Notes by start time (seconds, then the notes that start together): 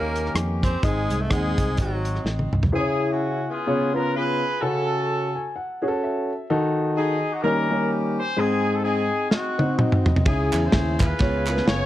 Already playing: D#2 D#3 A#3 C#4 D#4 G4 A#4 C#5
0.16 closed hi-hat
0.26 cross-stick
0.35 F2, cross-stick, closed hi-hat
0.63 C4 C5, kick, closed hi-hat
0.83 G#1 G#2 G#3 C4 D#4 G#4 D#5, kick, closed hi-hat
1.10 C2, closed hi-hat
1.21 A3 A4
1.30 D#2 G#3 C4 D#4 G#4 F#5, kick, cross-stick, closed hi-hat
1.58 C2, kick, closed hi-hat
1.77 G#1 F#3 C4 D#4 F#4, kick, closed hi-hat
2.05 closed hi-hat
2.16 cross-stick
2.25 A1, snare
2.39 high tom
2.52 C2, mid tom
2.63 floor tom
2.72 C#3 C#4 E4 G#4 C5
2.79 C#5
3.11 C#4 F#4
3.49 B3 F4 G#4
3.67 C#3 B3 C#4 F4 G#4 C#5
3.94 B3 C#4 F4 G#4 A#4 B4
4.15 F4 G#4 B4
4.61 C#3 C#4 F#4 A4
5.35 G#5
5.56 F#5
5.82 C#4 F#4 G#4
5.88 A4
6.03 E5
6.50 D#3 D#4 F#4 A4
6.96 D#4 G#4
7.32 F#4
7.42 D#3 G3 A#3 C#4 D#4 G4 A#4
7.70 G3 A#3 C#4 D#4 A#4
8.18 C5
8.37 G#2 C4 D#4 G#4
8.74 A4
8.82 C4 D#4 G#4
9.30 C4 D#4 F#4, snare
9.58 C4 D#4 F#4, high tom
9.79 mid tom
9.92 mid tom
10.06 floor tom
10.16 floor tom
10.25 C#2 C#3 C#4 D#4 E4 G#4, kick, ride
10.31 E4
10.52 E2, clap, ride
10.64 E4 G#4 C5
10.72 D#2, kick, snare, ride
11.00 F4 G#4 B4, kick, clap, ride
11.19 C#2 C#3 B3 C#4 F4 G#4 C#5, kick, snare, ride
11.47 B3 C#4 F4 G#4 A#4, clap, ride
11.55 B4, snare
11.67 F#1 F4 G#4 C#5, snare, ride